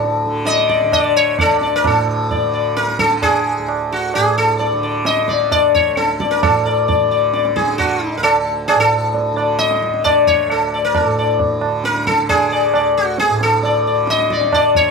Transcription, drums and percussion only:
0.45 tabla te medium
0.58 tabla te medium
0.70 tabla ke medium
0.81 tabla te medium
0.92 tabla na medium
0.92 tabla ge medium
1.39 tabla na medium
1.39 tabla ge medium
1.61 tabla te medium
1.84 tabla na loud
1.84 tabla ge medium
2.31 tabla tin medium
2.31 tabla ge medium
2.77 tabla te medium
2.88 tabla te medium
2.99 tabla ke medium
3.11 tabla te medium
3.22 tabla na medium
3.22 tabla ge medium
3.69 tabla na medium
4.14 tabla na medium
4.60 tabla tin medium
5.05 tabla te medium
5.17 tabla te medium
5.28 tabla ke medium
5.40 tabla te medium
5.51 tabla na medium
5.51 tabla ge medium
5.75 tabla ge soft
5.97 tabla te medium
6.08 tabla te medium
6.20 tabla ke medium
6.32 tabla te medium
6.43 tabla na loud
6.43 tabla ge medium
6.89 tabla tin medium
6.89 tabla ge medium
7.34 tabla te medium
7.45 tabla te medium
7.57 tabla ke medium
7.68 tabla te medium
7.79 tabla na medium
7.79 tabla ge medium
8.24 tabla na medium
8.69 tabla na medium
9.14 tabla tin medium
9.37 tabla na medium
9.59 tabla te medium
9.71 tabla te medium
9.82 tabla ke medium
9.94 tabla te medium
10.05 tabla na medium
10.05 tabla ge medium
10.27 tabla ge medium
10.50 tabla na medium
10.95 tabla na loud
10.95 tabla ge medium
11.39 tabla tin medium
11.39 tabla ge medium
11.61 tabla na medium
11.84 tabla te medium
11.96 tabla te medium
12.07 tabla ke medium
12.18 tabla te medium
12.30 tabla na medium
12.30 tabla ge medium
12.74 tabla na medium
13.18 tabla te medium
13.41 tabla te medium
13.63 tabla tin medium
14.07 tabla te medium
14.19 tabla te medium
14.30 tabla ke medium
14.41 tabla te medium
14.53 tabla na medium
14.53 tabla ge medium
14.75 tabla ge medium

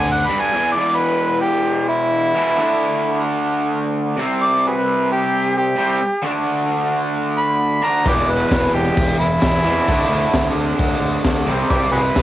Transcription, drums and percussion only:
0.05 ride medium
8.06 kick loud
8.06 crash medium
8.51 kick loud
8.51 snare loud
8.51 crash medium
8.97 kick loud
8.97 crash medium
9.42 kick loud
9.42 snare loud
9.42 crash medium
9.88 kick loud
9.88 crash medium
10.33 kick loud
10.33 snare loud
10.33 crash medium
10.79 kick loud
10.79 crash medium
11.24 kick loud
11.24 snare loud
11.24 crash medium
11.70 kick loud
11.70 crash medium
12.16 kick loud
12.16 snare loud
12.16 crash medium

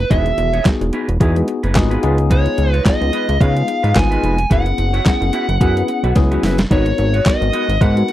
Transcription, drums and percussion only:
0.11 kick loud
0.11 closed hi-hat medium
0.26 closed hi-hat medium
0.38 closed hi-hat medium
0.54 closed hi-hat soft
0.65 kick loud
0.65 snare loud
0.65 clap medium
0.65 closed hi-hat medium
0.81 closed hi-hat soft
0.93 closed hi-hat medium
1.09 closed hi-hat medium
1.20 kick loud
1.20 closed hi-hat medium
1.36 closed hi-hat medium
1.48 closed hi-hat medium
1.64 closed hi-hat medium
1.75 kick loud
1.75 snare loud
1.75 clap medium
1.75 closed hi-hat medium
1.91 closed hi-hat medium
2.03 closed hi-hat medium
2.18 closed hi-hat medium
2.31 kick loud
2.31 closed hi-hat medium
2.46 closed hi-hat medium
2.58 closed hi-hat medium
2.74 closed hi-hat soft
2.86 kick loud
2.86 snare loud
2.86 clap medium
2.86 closed hi-hat medium
3.02 closed hi-hat soft
3.13 closed hi-hat medium
3.29 closed hi-hat medium
3.41 kick loud
3.41 closed hi-hat medium
3.57 closed hi-hat medium
3.68 closed hi-hat medium
3.84 closed hi-hat medium
3.96 kick loud
3.96 snare loud
3.96 clap medium
3.96 closed hi-hat medium
4.12 closed hi-hat medium
4.24 closed hi-hat medium
4.38 closed hi-hat medium
4.51 kick loud
4.51 closed hi-hat medium
4.66 closed hi-hat medium
4.78 closed hi-hat medium
4.94 closed hi-hat soft
5.06 kick loud
5.06 snare loud
5.06 clap medium
5.06 closed hi-hat medium
5.22 closed hi-hat medium
5.33 closed hi-hat medium
5.49 closed hi-hat medium
5.61 kick loud
5.61 closed hi-hat medium
5.77 closed hi-hat medium
5.88 closed hi-hat medium
6.04 closed hi-hat medium
6.16 kick loud
6.16 snare medium
6.16 closed hi-hat medium
6.32 closed hi-hat medium
6.43 snare loud
6.43 open hi-hat medium
6.58 snare loud
6.58 closed hi-hat medium
6.71 kick loud
6.71 closed hi-hat medium
6.86 closed hi-hat medium
6.98 closed hi-hat medium
7.14 closed hi-hat soft
7.26 kick loud
7.26 snare loud
7.26 clap medium
7.26 closed hi-hat medium
7.42 closed hi-hat soft
7.53 closed hi-hat medium
7.70 closed hi-hat medium
7.81 kick loud
7.81 closed hi-hat medium
7.97 closed hi-hat medium
8.08 closed hi-hat medium

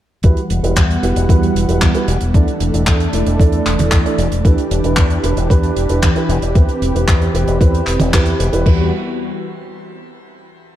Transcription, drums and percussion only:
0.23 kick loud
0.23 closed hi-hat medium
0.37 closed hi-hat soft
0.50 closed hi-hat medium
0.64 closed hi-hat medium
0.76 kick loud
0.76 clap loud
0.76 closed hi-hat medium
0.91 closed hi-hat soft
1.03 closed hi-hat medium
1.16 closed hi-hat medium
1.29 kick loud
1.29 closed hi-hat medium
1.43 closed hi-hat soft
1.56 closed hi-hat medium
1.69 closed hi-hat medium
1.82 kick loud
1.82 clap loud
1.82 closed hi-hat medium
1.94 closed hi-hat soft
2.08 closed hi-hat loud
2.21 closed hi-hat medium
2.34 kick loud
2.34 closed hi-hat medium
2.48 closed hi-hat soft
2.60 closed hi-hat loud
2.74 closed hi-hat medium
2.87 kick loud
2.87 clap loud
2.87 closed hi-hat medium
3.00 closed hi-hat soft
3.13 closed hi-hat medium
3.26 closed hi-hat medium
3.40 kick loud
3.40 closed hi-hat medium
3.52 closed hi-hat soft
3.66 clap medium
3.66 closed hi-hat medium
3.79 closed hi-hat medium
3.79 high tom soft
3.91 kick loud
3.91 clap loud
3.91 closed hi-hat medium
4.06 closed hi-hat soft
4.18 closed hi-hat medium
4.32 closed hi-hat medium
4.45 kick loud
4.45 closed hi-hat medium
4.58 closed hi-hat soft
4.71 closed hi-hat medium
4.84 closed hi-hat medium
4.97 kick loud
4.97 clap loud
4.97 closed hi-hat medium
5.10 closed hi-hat soft
5.24 closed hi-hat medium
5.37 closed hi-hat medium
5.50 kick loud
5.50 closed hi-hat medium
5.63 closed hi-hat soft
5.76 closed hi-hat medium
5.89 closed hi-hat medium
6.02 kick loud
6.02 clap loud
6.02 closed hi-hat medium
6.16 closed hi-hat soft
6.29 closed hi-hat medium
6.42 closed hi-hat medium
6.55 kick loud
6.55 closed hi-hat medium
6.69 closed hi-hat soft
6.82 closed hi-hat medium
6.96 closed hi-hat medium
7.08 kick loud
7.08 clap loud
7.08 closed hi-hat medium
7.22 closed hi-hat soft
7.35 closed hi-hat medium
7.48 closed hi-hat medium
7.61 kick loud
7.61 closed hi-hat medium
7.74 closed hi-hat soft
7.87 clap medium
7.87 closed hi-hat loud
8.00 closed hi-hat medium
8.00 high tom medium
8.13 kick loud
8.13 clap loud
8.13 closed hi-hat medium
8.26 closed hi-hat soft
8.40 closed hi-hat medium
8.53 closed hi-hat medium
8.66 kick loud
8.66 crash medium

